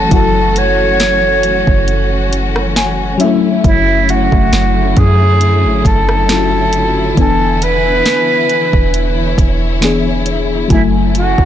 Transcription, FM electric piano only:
0.09 3.15 F#3 medium
0.09 3.16 E4 medium
0.13 3.17 F#4 medium
0.13 3.18 A4 medium
2.77 3.18 G#5 medium
3.18 6.24 F#3 medium
3.18 6.25 C#4 medium
3.18 3.62 E5 medium
3.22 6.27 A3 medium
3.22 6.26 E4 medium
6.28 7.17 F#3 medium
6.28 7.17 C#4 soft
6.28 7.18 E4 medium
6.28 6.37 F4 soft
6.38 7.22 F#4 medium
7.15 9.77 E3 medium
7.15 9.78 B3 medium
7.19 9.79 D4 medium
7.19 9.80 G#5 medium
9.81 10.70 E3 medium
9.81 10.70 B3 medium
9.81 10.71 D4 medium
9.81 10.71 G#4 medium
10.68 11.45 F#3 medium
10.68 11.45 E4 medium
10.72 11.45 A3 medium
10.72 11.45 G#5 medium

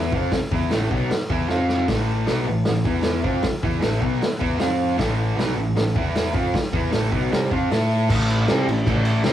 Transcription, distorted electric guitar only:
0.00 0.12 E3 medium
0.00 0.13 B3 medium
0.00 0.13 E4 medium
0.13 0.32 F3 medium
0.13 0.33 C4 medium
0.13 0.33 F4 loud
0.34 muted distorted electric guitar stroke medium
0.51 0.71 E3 medium
0.51 0.71 B3 medium
0.51 0.71 E4 loud
0.71 0.90 A2 medium
0.71 0.90 E3 medium
0.71 0.91 A3 medium
0.90 1.10 B2 medium
0.90 1.10 F#3 medium
0.90 1.10 B3 loud
1.10 muted distorted electric guitar stroke medium
1.29 1.47 E3 medium
1.29 1.48 B3 medium
1.29 1.48 E4 loud
1.47 1.87 F3 medium
1.47 1.88 C4 loud
1.47 1.88 F4 loud
1.88 2.26 A2 medium
1.88 2.27 E3 loud
1.88 2.27 A3 loud
2.27 2.45 B2 medium
2.27 2.46 F#3 medium
2.27 2.47 B3 medium
2.45 2.62 A2 medium
2.45 2.62 E3 medium
2.65 2.81 A2 medium
2.65 2.82 E3 medium
2.84 3.23 E3 medium
2.84 3.24 B3 medium
2.84 3.24 E4 medium
3.23 3.43 F3 medium
3.23 3.44 C4 medium
3.23 3.44 F4 medium
3.44 muted distorted electric guitar stroke medium
3.62 3.80 E3 medium
3.62 3.81 B3 medium
3.62 3.81 E4 medium
3.81 3.99 A2 medium
3.81 4.01 E3 medium
3.81 4.01 A3 medium
4.00 4.20 B2 medium
4.00 4.21 F#3 medium
4.00 4.21 B3 medium
4.21 muted distorted electric guitar stroke medium
4.39 4.58 E3 medium
4.39 4.58 B3 medium
4.39 4.59 E4 loud
4.58 4.96 F3 medium
4.58 4.97 C4 medium
4.58 4.97 F4 loud
4.97 5.36 A2 medium
4.97 5.36 E3 medium
4.97 5.37 A3 loud
5.36 5.54 B2 medium
5.36 5.55 F#3 medium
5.36 5.57 B3 loud
5.55 5.72 A2 medium
5.55 5.72 E3 medium
5.76 5.92 A2 medium
5.76 5.92 E3 medium
5.94 6.32 E3 medium
5.94 6.33 B3 medium
5.94 6.34 E4 loud
6.33 6.53 F3 medium
6.33 6.53 C4 medium
6.33 6.54 F4 loud
6.54 muted distorted electric guitar stroke medium
6.73 6.90 E3 medium
6.73 6.91 B3 loud
6.73 6.92 E4 medium
6.91 7.10 A2 medium
6.91 7.11 E3 medium
6.91 7.12 A3 loud
7.11 7.30 B2 medium
7.11 7.31 F#3 loud
7.11 7.31 B3 loud
7.31 7.50 C3 medium
7.31 7.51 G3 loud
7.31 7.51 C4 loud
7.51 7.70 F3 medium
7.51 7.70 C4 medium
7.51 7.71 F4 medium
7.70 8.09 A3 medium
7.70 8.09 E4 loud
7.70 8.10 A4 loud
8.09 8.47 A2 medium
8.09 8.48 E3 loud
8.09 8.48 A3 loud
8.47 8.67 C3 loud
8.47 8.66 G3 medium
8.47 8.67 C4 loud
8.67 8.83 A2 medium
8.67 8.83 E3 medium
8.85 9.24 A2 loud
8.85 9.25 E3 loud
8.85 9.25 A3 loud
9.25 9.33 C3 medium
9.25 9.33 G3 loud
9.25 9.33 C4 loud

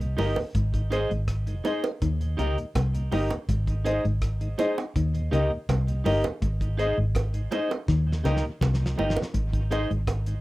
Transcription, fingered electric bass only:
0.00 0.15 C2 medium
0.18 0.36 G1 medium
0.55 1.05 G#1 loud
1.11 1.60 G#1 medium
2.02 2.35 D#2 loud
2.39 2.56 C#2 medium
2.76 3.08 C2 medium
3.13 3.29 G1 medium
3.49 3.99 G#1 loud
4.05 4.53 G#1 medium
4.96 5.28 D#2 loud
5.32 5.49 C#2 medium
5.69 6.02 C2 medium
6.06 6.23 G1 medium
6.42 6.92 G#1 loud
6.98 7.46 G#1 medium
7.88 8.21 D#2 loud
8.25 8.42 C#2 medium
8.61 8.94 C2 medium
8.99 9.16 G1 medium
9.34 9.84 G#1 loud
9.91 10.39 G#1 medium

